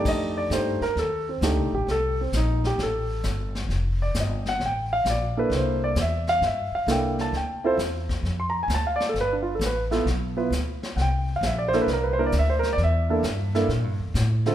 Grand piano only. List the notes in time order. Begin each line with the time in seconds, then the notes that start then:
Already playing: A3 D4 D#4 G4
0.08 D#5
0.37 D5
0.51 A3 D4 D#4 G4 C5
0.82 A#4
0.99 A4
1.29 C4
1.43 A3 D4 D#4 G4
1.75 G4
1.91 A4
2.21 C4
2.36 D#4
2.67 G4
2.83 A4
4.02 D5
4.20 D#5
4.49 F#5
4.66 G5
4.93 F5
5.10 D5
5.37 A#3 D4 E4 A4 B4
5.57 C5
5.84 D5
6.01 E5
6.29 F5
6.46 E5
6.75 F5
6.88 A#3 D4 E4 A4
6.92 G5
7.21 A5
7.37 G5
7.64 C4 E4 F4 A4 C5
8.40 C6
8.50 A#5
8.63 G#5
8.74 A5
8.87 F5
8.96 D5
9.09 A4
9.21 B4
9.33 D4
9.42 F4
9.55 A4
9.66 B4
9.91 B3 E4 F4 A4
10.37 B3 E4 F4 B4
10.97 F#5
11.01 G5
11.36 F5
11.46 E5
11.58 D5
11.68 C5
11.74 A#3 D4 E4 A4
11.82 B4
11.93 A#4
12.03 B4
12.13 C5
12.18 A#3 D4 E4 A#4
12.26 D5
12.39 E5
12.50 C5
12.59 A#4
12.73 D5
12.84 E5
13.10 A#3 D4 E4 A4
13.55 A#3 D4 E4 A4
14.46 D3 C4 E4 F4 A4